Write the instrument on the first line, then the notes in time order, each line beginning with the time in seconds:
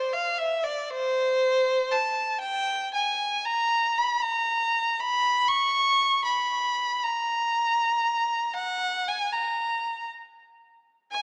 violin
Already playing: C5
0.13 F5
0.38 E5
0.63 D5
0.90 C5
1.91 A5
2.41 G5
2.94 G#5
3.45 A#5
3.98 B5
4.22 A#5
5.00 B5
5.48 C#6
6.25 B5
7.03 A#5
8.53 F#5
9.08 G#5
9.32 A#5
11.12 G#5